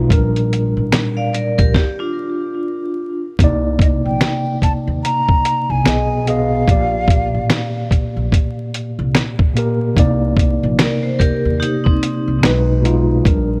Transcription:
Already playing: B2 G#3 D#4 F4 B4
0.08 A#1 A#2 G3 D4, kick, closed hi-hat
0.13 A#4
0.36 closed hi-hat
0.53 closed hi-hat
0.77 A1
0.92 finger snap, snare, closed hi-hat
1.17 D5 F5
1.33 A#4 D5, closed hi-hat
1.58 A#1 G4 A#4, kick, closed hi-hat
1.74 G4, kick, snare
1.99 D4 F4
3.39 C2 C3 A#3 D#4, kick, closed hi-hat
3.44 D5
3.79 D#5, kick, closed hi-hat
4.05 A#1 G5
4.21 finger snap, snare, closed hi-hat
4.62 A5, kick, closed hi-hat
4.87 D#2
5.04 A#5, closed hi-hat
5.29 kick
5.45 closed hi-hat
5.70 C2 G#5
5.84 B1 B2 B3 G#4, finger snap, snare, closed hi-hat
5.89 D#5
6.25 B2 B3 G#4 F5, closed hi-hat
6.30 D#5
6.66 A#1 A#2 A#3 G4, kick, closed hi-hat
6.71 D5
7.08 kick, closed hi-hat
7.34 A1
7.50 finger snap, snare, closed hi-hat
7.91 kick, closed hi-hat
8.16 A#1
8.32 kick, closed hi-hat
8.74 closed hi-hat
8.99 C2
9.15 finger snap, snare, closed hi-hat
9.39 kick
9.54 A#2 A#3 G4, closed hi-hat
9.59 A#4
9.95 C2 C3 A#3 D#4, kick, closed hi-hat
10.00 D5
10.37 kick, closed hi-hat
10.63 A#1
10.79 A#4 D5, finger snap, snare, closed hi-hat
11.03 C5
11.19 G4 A#4, kick, closed hi-hat
11.45 D#2
11.60 D#4 G4, closed hi-hat
11.84 C4 D#4, kick
12.03 closed hi-hat
12.28 C2
12.41 B1 B2 G#3 D#4, finger snap, snare
12.45 B4, closed hi-hat
12.82 B2 G#3 D#4, closed hi-hat
12.86 F4
13.23 A#1 A#2 G3 D4, kick, closed hi-hat
13.28 A#4

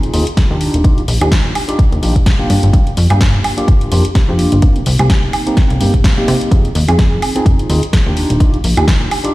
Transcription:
Already playing: C4 D#4 F4 G#4
0.03 closed hi-hat
0.13 D#2 C4 D#4 F4 G#4, open hi-hat
0.27 closed hi-hat
0.37 kick, snare, closed hi-hat
0.50 D#2 D4 D#4 F4 G4
0.61 open hi-hat
0.74 D#1, closed hi-hat
0.84 D4 D#4 F4 G4, kick, closed hi-hat
0.98 A#1, closed hi-hat
1.08 A#1, open hi-hat
1.21 D#2 D4 D#4 F4 G4, closed hi-hat, high woodblock
1.32 kick, snare, closed hi-hat
1.55 open hi-hat, high woodblock
1.68 D4 D#4 F4 G4, closed hi-hat
1.79 kick, closed hi-hat
1.92 D#2, closed hi-hat
2.02 A#1 D4 D#4 F4 G4, open hi-hat
2.16 kick, closed hi-hat
2.26 kick, snare, closed hi-hat
2.39 A#3 D4 F4 G4
2.50 G2, open hi-hat
2.63 G1, closed hi-hat
2.73 G2 A#3 D4 F4 G4, kick, closed hi-hat
2.87 closed hi-hat
2.97 F2, open hi-hat
3.10 G2 A#3 D4 F4 G4, closed hi-hat, high woodblock
3.21 kick, snare, closed hi-hat
3.44 open hi-hat, high woodblock
3.57 A#3 D4 F4 G4, closed hi-hat
3.68 G1, kick, closed hi-hat
3.81 closed hi-hat
3.91 F2 A#3 D4 F4 G4, open hi-hat
4.05 closed hi-hat
4.15 kick, snare, closed hi-hat
4.28 F2 A#3 D4 F4 G4
4.39 open hi-hat
4.52 G1, closed hi-hat
4.62 A#3 C4 D#4 G4, kick, closed hi-hat
4.76 C2, closed hi-hat
4.86 C2, open hi-hat
4.99 C2 A#3 C4 D#4 G4, closed hi-hat, high woodblock
5.10 kick, snare, closed hi-hat
5.33 open hi-hat, high woodblock
5.46 A#3 C4 D#4 G4, closed hi-hat
5.57 kick, snare, closed hi-hat
5.70 C2, closed hi-hat
5.80 G2 A#3 C4 D#4 G4, open hi-hat
5.94 kick, closed hi-hat
6.04 kick, snare, closed hi-hat
6.17 A#3 C4 D#4 G4
6.28 C3, open hi-hat
6.41 closed hi-hat
6.51 F2 C4 D#4 F4 G#4, kick, closed hi-hat
6.65 closed hi-hat
6.75 D#2, open hi-hat
6.88 F2 C4 D#4 F4 G#4, closed hi-hat, high woodblock
6.99 kick, snare, closed hi-hat
7.22 open hi-hat, high woodblock
7.35 C4 D#4 F4 G#4, closed hi-hat
7.46 F1, kick, closed hi-hat
7.59 closed hi-hat
7.69 D#2 C4 D#4 F4 G#4, open hi-hat
7.83 closed hi-hat
7.93 kick, snare, closed hi-hat
8.06 D#2 D4 D#4 F4 G4
8.17 open hi-hat
8.30 D#1, closed hi-hat
8.40 D4 D#4 F4 G4, kick, closed hi-hat
8.54 A#1, closed hi-hat
8.64 A#1, open hi-hat
8.77 D#2 D4 D#4 F4 G4, closed hi-hat, high woodblock
8.88 kick, snare, closed hi-hat
9.11 open hi-hat, high woodblock
9.24 D4 D#4 F4 G4, closed hi-hat

